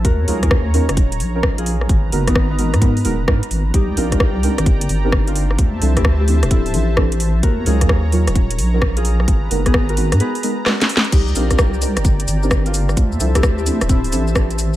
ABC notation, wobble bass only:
X:1
M:4/4
L:1/16
Q:"Swing 16ths" 1/4=130
K:Eblyd
V:1 name="Wobble bass" clef=bass
E,,2 _D,, E,,4 E,,,3 B,,,6 | _A,,,2 _G,,, A,,,4 _A,,3 E,,,2 A,, z A,,,2 | C,,2 B,,, C,,4 G,,,3 G,,,6 | D,,2 C,, D,,4 D,,,3 A,,,6 |
E,,2 _D,, E,,4 E,,,3 B,,,6 | _A,,,2 _G,,, A,,,4 _A,, z8 | C,,2 B,,, C,,4 G,,,3 G,,,6 | D,,2 C,, D,,4 D,,,3 A,,,6 |]